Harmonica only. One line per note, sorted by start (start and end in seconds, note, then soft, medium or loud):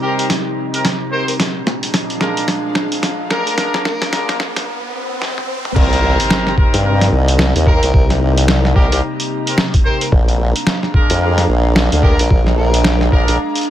0.03 0.13 G4 medium
0.19 0.26 G4 medium
1.12 1.23 A#4 medium
1.28 1.35 A#4 medium
3.31 3.74 A#4 loud
3.86 4.29 A#4 medium
7.67 8.11 A#4 medium
8.76 8.86 G4 medium
8.92 8.99 G4 medium
9.86 9.96 A#4 medium
10.02 10.09 A#4 medium
12.03 12.12 G4 medium
12.03 12.47 A#4 loud
12.58 13.01 A#4 medium